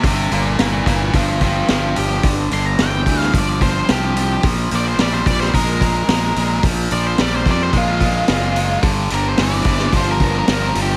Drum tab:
HH |o-o-o-o-o-o-o-o-|o-o-o-o-o-o-o-o-|o-o-o-o-o-o-o-o-|o-o-o-o-o-o-o-o-|
SD |----o-------o---|----o--o----o---|----o--o----o---|----o-------o---|
BD |o-----o-o-o-----|o-----o-o-o-----|o-----o-o-o-----|o-----o-o-o-----|

HH |o-o-o-o-o-o-o-o-|
SD |----o--o----o---|
BD |o-----o-o-o-----|